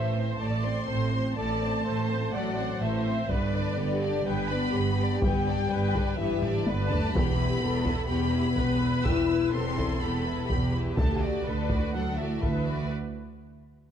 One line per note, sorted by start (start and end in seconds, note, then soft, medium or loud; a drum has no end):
0.00 0.35 A1 soft
0.00 0.34 A2 soft
0.00 0.37 E3 medium
0.00 0.16 A3 soft
0.00 0.16 A4 soft
0.00 0.40 C5 soft
0.00 0.36 E5 medium
0.16 0.41 C4 soft
0.16 0.40 C5 soft
0.40 0.83 A1 soft
0.40 0.83 A2 soft
0.40 0.63 A3 soft
0.40 0.66 A3 medium
0.40 0.62 A4 soft
0.40 0.89 D5 soft
0.40 0.64 A5 medium
0.64 1.37 C4 medium
0.64 0.89 C4 soft
0.64 0.89 C5 soft
0.64 1.37 C6 medium
0.86 1.32 A1 soft
0.86 1.31 A2 soft
0.86 1.12 A3 soft
0.86 1.12 A4 soft
0.86 1.35 C5 medium
1.12 1.36 C4 soft
1.12 1.36 C5 soft
1.36 1.80 A1 soft
1.36 1.80 A2 medium
1.36 2.33 A3 medium
1.36 1.59 A3 soft
1.36 1.60 A4 soft
1.36 1.84 D5 soft
1.36 2.32 A5 medium
1.61 1.85 C4 soft
1.61 1.86 C5 soft
1.83 2.28 A1 soft
1.83 2.27 A2 soft
1.83 2.08 A3 soft
1.83 2.08 A4 soft
1.83 2.33 C5 medium
2.09 2.34 C4 soft
2.09 2.34 C5 soft
2.33 2.76 A1 medium
2.33 2.76 A2 medium
2.33 2.83 F#3 medium
2.33 2.56 A3 soft
2.33 2.56 A4 soft
2.33 2.82 D5 medium
2.33 2.81 F#5 medium
2.57 2.81 C4 soft
2.57 2.82 C5 soft
2.81 3.24 A1 soft
2.81 3.24 A2 soft
2.81 3.30 E3 soft
2.81 3.06 A3 soft
2.81 3.06 A4 soft
2.81 3.29 C5 soft
2.81 3.29 E5 medium
3.07 3.30 C4 soft
3.07 3.30 C5 soft
3.29 3.72 G1 medium
3.29 3.72 G2 medium
3.29 4.25 D3 medium
3.29 3.51 B3 soft
3.29 3.52 B4 soft
3.29 3.78 B4 medium
3.29 4.26 D5 medium
3.29 taiko medium
3.55 3.79 D4 soft
3.55 3.78 D5 soft
3.77 4.20 G1 medium
3.77 4.21 G2 medium
3.77 4.02 B3 soft
3.77 4.26 G4 medium
3.77 4.02 B4 soft
4.02 4.26 D4 soft
4.02 4.26 D5 soft
4.25 4.68 G1 medium
4.25 4.68 G2 medium
4.25 4.50 G3 medium
4.25 4.49 B3 soft
4.25 4.49 B4 soft
4.25 4.75 B4 medium
4.25 4.50 G5 medium
4.49 5.22 B3 medium
4.49 4.75 D4 soft
4.49 4.75 D5 soft
4.49 5.22 B5 medium
4.73 5.17 G1 medium
4.73 5.16 G2 medium
4.73 5.00 B3 soft
4.73 5.71 G4 medium
4.73 4.99 B4 soft
5.02 5.24 D4 soft
5.02 5.24 D5 soft
5.19 5.65 G1 medium
5.19 5.64 G2 medium
5.19 6.15 G3 medium
5.19 6.16 G5 medium
5.19 taiko medium
5.24 5.46 B3 soft
5.24 5.45 B4 soft
5.48 5.71 D4 soft
5.48 5.71 D5 soft
5.70 6.13 G1 medium
5.70 6.13 G2 medium
5.70 5.95 B3 soft
5.70 6.18 B4 medium
5.70 5.95 B4 soft
5.94 6.19 D4 soft
5.94 6.20 D5 soft
5.94 taiko medium
6.17 6.61 G1 medium
6.17 6.60 G2 medium
6.17 6.65 E3 medium
6.17 6.42 B3 medium
6.17 6.66 G4 medium
6.17 6.41 B4 medium
6.17 6.65 E5 medium
6.42 6.67 D4 soft
6.42 6.67 D5 soft
6.42 taiko low-mid medium
6.65 7.09 G1 medium
6.65 7.09 G2 medium
6.65 6.91 D3 medium
6.65 6.91 B3 soft
6.65 6.91 B4 soft
6.65 7.14 B4 medium
6.65 6.90 D5 medium
6.65 taiko high medium
6.90 7.14 A3 medium
6.90 7.14 D4 soft
6.90 7.14 D5 soft
6.90 7.14 A5 medium
6.90 taiko low medium
7.13 7.56 E1 medium
7.13 7.56 E2 medium
7.13 7.92 B3 medium
7.13 7.36 B3 soft
7.13 7.36 G4 soft
7.13 7.62 G4 medium
7.13 8.07 B5 medium
7.13 taiko medium
7.37 7.62 E4 soft
7.37 7.62 B4 soft
7.61 8.04 E1 medium
7.61 8.04 E2 medium
7.61 7.85 B3 soft
7.61 7.85 G4 soft
7.61 8.10 A4 medium
7.83 8.09 E4 soft
7.83 8.08 B4 soft
7.83 taiko medium
8.07 8.52 E1 medium
8.07 8.51 E2 medium
8.07 8.31 B3 soft
8.07 9.03 B3 medium
8.07 8.30 G4 soft
8.07 8.57 G4 medium
8.07 9.03 B5 medium
8.32 8.57 E4 soft
8.32 8.57 B4 soft
8.57 9.00 E1 medium
8.57 9.00 E2 medium
8.57 8.82 B3 soft
8.57 8.81 G4 soft
8.57 9.52 B4 medium
8.57 taiko medium
8.79 9.04 E4 soft
8.79 9.04 B4 soft
9.02 9.47 E2 medium
9.02 9.26 B3 soft
9.02 9.26 G4 soft
9.02 9.52 E6 medium
9.02 taiko medium
9.06 9.48 E1 medium
9.06 9.53 E4 medium
9.28 9.53 E4 soft
9.28 9.53 B4 soft
9.52 9.96 E1 medium
9.52 9.96 E2 medium
9.52 9.77 B3 soft
9.52 10.01 C4 medium
9.52 9.77 G4 soft
9.52 10.50 A4 medium
9.52 10.00 C6 medium
9.76 10.01 E4 soft
9.76 10.01 B4 soft
9.76 taiko medium
10.01 10.44 E1 medium
10.01 10.43 E2 soft
10.01 10.24 B3 soft
10.01 10.49 B3 medium
10.01 10.23 G4 soft
10.01 10.46 B5 medium
10.24 10.49 E4 soft
10.24 10.49 B4 soft
10.47 10.92 E2 soft
10.47 10.73 B3 soft
10.47 10.73 B3 medium
10.47 10.74 G4 soft
10.47 11.46 G4 medium
10.47 10.72 B5 medium
10.47 taiko medium
10.52 10.93 E1 soft
10.74 10.98 E4 soft
10.74 10.98 B4 soft
10.97 11.40 D2 medium
10.97 11.20 D4 soft
10.97 11.20 A4 soft
10.97 11.19 A5 medium
10.97 taiko medium
11.02 11.22 A3 medium
11.21 11.93 D3 medium
11.21 11.45 F#4 soft
11.21 11.94 D5 medium
11.21 11.45 D5 soft
11.46 11.89 D2 soft
11.46 11.70 D4 soft
11.46 11.70 A4 soft
11.46 11.94 B4 medium
11.69 11.94 F#4 soft
11.69 11.94 D5 soft
11.69 taiko medium
11.94 12.37 D2 soft
11.94 12.18 F#3 soft
11.94 12.17 D4 soft
11.94 12.17 A4 soft
11.94 12.43 A4 soft
11.94 12.18 F#5 medium
12.18 12.91 E3 soft
12.18 12.42 F#4 soft
12.18 12.43 D5 soft
12.18 12.91 E5 soft
12.42 12.85 D2 soft
12.42 12.86 D2 soft
12.42 12.66 D4 soft
12.42 12.66 A4 soft
12.42 12.91 B4 soft
12.42 taiko soft
12.65 12.90 F#4 soft
12.65 12.90 D5 soft